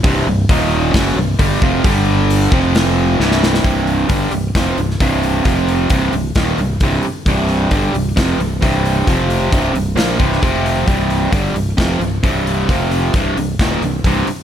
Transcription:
<<
  \new Staff \with { instrumentName = "Overdriven electric guitar" } { \clef bass \time 4/4 \key f \major \tempo 4 = 133 <c, g, c>8 <c, g,>8 <ees, bes, ees>4 <fis, des fis>8 <c, g,>8 <g, d g>8 <f, c f>8 | <g, d g>4. <f, c f>4. <c, g, c>4 | <c, g, c>4 <g, d g>8 <c, g,>8 <f, c f>8 <c, g,>8 <c, g, c>4 | <f, c f>4 <c, g, c>8 <c, g,>8 <ees, bes, ees>8 <c, g,>8 <c, g, c>8 r8 |
<c, g, c>4 <g, d g>8 <c, g,>8 <f, c f>8 <c, g,>8 <c, g, c>4 | <f, c f>4 <c, g, c>8 <c, g,>8 <bes, f bes>8 <c, g, c>8 <f, c f>4 | <c, g, c>4 <g, d g>8 <c, g,>8 <f, c f>8 <c, g,>8 <c, g, c>4 | <f, c f>4 <c, g, c>8 <c, g,>8 <ees, bes, ees>8 <c, g,>8 <c, g, c>8 r8 | }
  \new Staff \with { instrumentName = "Fingered electric bass" } { \clef bass \time 4/4 \key f \major c,,8 c,,8 ees,,4 fis,,8 c,,8 g,,8 f,,8 | g,,4. f,,4. c,,4 | c,,4 g,,8 c,,8 f,,8 c,,8 c,,4 | f,,4 c,,8 c,,8 ees,,8 c,,8 c,,8 r8 |
c,,4 g,,8 c,,8 f,,8 c,,8 c,,4 | f,,4 c,,8 c,,8 bes,,8 c,,8 f,,4 | c,,4 g,,8 c,,8 f,,8 c,,8 c,,4 | f,,4 c,,8 c,,8 ees,,8 c,,8 c,,8 r8 | }
  \new DrumStaff \with { instrumentName = "Drums" } \drummode { \time 4/4 <hho bd>4 <hho bd>4 <hho bd sn>4 <hho bd>8 bd8 | <hho bd>4 hho8 bd8 <hho sn>4 sn16 sn16 sn16 sn16 | <hho bd>8 hho8 <hho bd>8 hho8 <hho bd sn>8 hho16 sn16 <hho bd>8 hho8 | <hho bd>8 hho8 <hho bd>8 hho8 <hho bd sn>8 hho8 <hho bd>8 hho8 |
<hho bd>8 hho8 <hho bd>8 hho8 <hho bd sn>8 hho8 <hho bd>8 hho8 | <hho bd>8 hho8 <hho bd>8 hho8 <hho sn>8 <hho bd>16 sn16 <hho bd>8 hho8 | <hho bd>8 hho8 <hho bd>8 hho8 <hho bd sn>8 hho8 <hho bd>8 hho8 | <hho bd>8 hho8 <hho bd>8 hho8 <hho bd sn>8 hho8 <hho bd>8 hho8 | }
>>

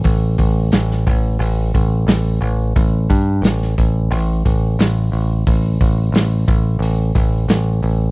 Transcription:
<<
  \new Staff \with { instrumentName = "Picked electric bass" } { \clef bass \time 4/4 \key g \major \tempo 4 = 89 a,,8 a,,8 a,,8 a,,8 a,,8 a,,8 a,,8 a,,8 | a,,8 g,8 a,,8 a,,8 a,,8 a,,8 a,,8 a,,8 | a,,8 a,,8 a,,8 a,,8 a,,8 a,,8 a,,8 a,,8 | }
  \new DrumStaff \with { instrumentName = "Drums" } \drummode { \time 4/4 <hho bd>8 <hho bd>8 <hho sn>16 sn16 <hho bd>8 hho8 <hho bd>8 <hho sn>8 hho8 | <hho bd>8 <hho bd>8 <hho sn>16 sn16 <hho bd>8 hho8 <hho bd>8 <hho sn>8 hho8 | <hho bd>8 <hho bd>8 <hho sn>8 <hho bd>8 hho8 <hho bd>8 <hho sn>8 hho8 | }
>>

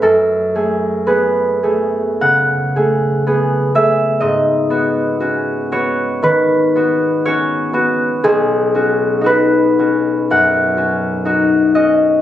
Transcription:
\new Staff \with { instrumentName = "Harp" } { \time 4/4 \key fis \dorian \tempo 4 = 60 << { a'4 b'4 fis''4. e''8 | dis''4. cis''8 b'4 cis''4 | gis'4 b'4 fis''4. dis''8 | } \\ { <fis, a cis' b'>8 <a gis'>8 <b gis'>8 <a gis'>8 cis8 <a gis'>8 <b gis'>8 <a gis'>8 | gis,8 <b fis'>8 <cis' fis'>8 <b fis'>8 dis8 <b fis'>8 <cis' fis'>8 <b fis'>8 | b,,8 <cis' fis'>8 <dis' fis'>8 <cis' fis'>8 fis,8 <cis' fis'>8 <dis' fis'>8 <cis' fis'>8 | } >> }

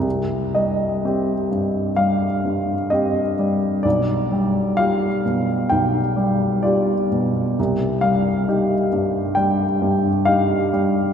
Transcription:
<<
  \new Staff \with { instrumentName = "Grand piano" } { \time 4/4 \key c \minor \tempo 4 = 64 r8 ees''4. f''4 ees''4 | d''4 f''4 g''4 d''4 | r8 f''4. g''4 f''4 | }
  \new Staff \with { instrumentName = "Grand piano" } { \clef bass \time 4/4 \key c \minor c,8 g8 <c' g'>8 g,8 g8 g,8 <c' g'>8 g8 | b,,8 g8 <f' g'>8 b,8 b,,8 g8 <f' g'>8 b,8 | c,8 g8 <ees' g'>8 g,8 g8 g,8 <ees' g'>8 g8 | }
>>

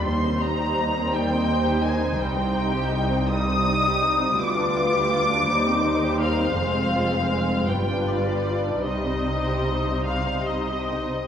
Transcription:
<<
  \new Staff \with { instrumentName = "Violin section" } { \time 6/8 \key c \minor \tempo 4. = 55 c'''8 bes''4 g''4 aes''8 | g''4. ees'''4. | d'''2~ d'''8 f''8~ | f''4. g''8 d''4 |
ees''4. f''8 ees''4 | }
  \new Staff \with { instrumentName = "Violin section" } { \time 6/8 \key c \minor << { c''2.~ | c''2. | b'4. c''4.~ | c''4. b'4. |
c''2~ c''8 r8 | } \\ { g16 c'16 ees'16 g'16 ees'16 c'16 g16 c'16 ees'16 g'16 ees'16 c'16 | g16 c'16 ees'16 g'16 ees'16 c'16 g16 c'16 ees'16 g'16 ees'16 c'16 | b16 d'16 f'16 g'16 f'16 d'16 g16 c'16 ees'16 g'16 ees'16 c'16 | aes16 c'16 f'16 c'16 aes16 c'16 b16 d'16 f'16 g'16 f'16 d'16 |
g16 c'16 ees'16 g'16 ees'16 c'16 g16 c'16 ees'16 g'16 ees'16 c'16 | } >> }
  \new Staff \with { instrumentName = "Viola section" } { \time 6/8 \key c \minor << { ees'2.~ | ees'2. | f'4. ees'4. | c'4. f'4. |
ees'2~ ees'8 r8 | } \\ { g2. | g2.~ | g2. | aes4. g4.~ |
g2~ g8. r16 | } >> }
  \new Staff \with { instrumentName = "Cello section" } { \clef bass \time 6/8 \key c \minor ees,2. | c,2. | d,4. ees,4. | f,4. g,4. |
c2~ c8 r8 | }
  \new Staff \with { instrumentName = "Double bass section" } { \clef bass \time 6/8 \key c \minor ees,2. | c,2. | d,4. ees,4. | f,,4. g,,4. |
c,2~ c,8 r8 | }
>>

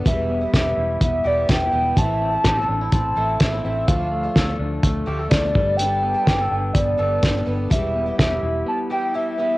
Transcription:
<<
  \new Staff \with { instrumentName = "Soft synth lead" } { \time 4/4 \key e \phrygian \tempo 4 = 125 e''4 e''4 e''8 d''8 g''4 | a''2 a''4 r8 e''8 | f''4. r4. d''4 | g''2 d''4. r8 |
e''4 e''4 a''8 g''8 e''4 | }
  \new Staff \with { instrumentName = "Clean electric guitar" } { \time 4/4 \key e \phrygian g8 b8 g'8 e'8 b8 g'8 e'8 b8 | e8 c'8 g'16 a'16 d'16 e'16 c'8 a'8 d'16 e'16 c'8 | f8 a8 a'8 d'8 a8 g'16 a'16 d'8 g8 | g8 b8 g'16 a'16 d'8 b8 a'8 d'8 b8 |
g8 b8 g'8 e'8 b8 g'8 e'8 b8 | }
  \new Staff \with { instrumentName = "Twelve-string acoustic guitar" } { \time 4/4 \key e \phrygian <e, b, e g b e'>8. <e g b e'>4.~ <e g b e'>16 <e g b e'>8 <e g b e'>8 <e g b e'>8 | <a, e a c' e'>8. <a c' e'>4.~ <a c' e'>16 <e a c' e'>8 <e a c' e'>8 <e a c' e'>8 | <d a d' f'>8. <a d' f'>4.~ <a d' f'>16 <d a d' f'>8 <d a d' f'>8 <g b d' a'>8 | <g b d' a'>8. <b d' a'>4.~ <b d' a'>16 <g b d' a'>8 <g b d' a'>8 <g b d' a'>8 |
<e, b, e g e' g'>8. <e g e' g'>4.~ <e g e' g'>16 <e g e' g'>8 <e g e' g'>8 <e g e' g'>8 | }
  \new Staff \with { instrumentName = "Fingered electric bass" } { \clef bass \time 4/4 \key e \phrygian e,,4 e,,8 e,,8 e,,8 e,,8 e,,8 e,,8 | a,,4 a,,8 a,,8 a,,8 a,,8 a,,8 a,,8 | d,4 d,8 d,8 d,8 d,8 d,8 g,,8~ | g,,4 g,,8 g,,8 g,,8 g,,8 g,,8 g,,8 |
e,,4 e,,8 e,,8 r2 | }
  \new DrumStaff \with { instrumentName = "Drums" } \drummode { \time 4/4 <hh bd>4 <hh bd sn>4 <hh bd>4 <hh bd sn>4 | <hh bd>4 <hh bd sn>4 <hh bd>4 <hh bd sn>4 | <hh bd>4 <hh bd sn>4 <hh bd>4 <hh bd sn>8 bd8 | hh4 <hh bd sn>4 <hh bd>4 <hh bd sn>4 |
<hh bd>4 <hh bd sn>4 r4 r4 | }
>>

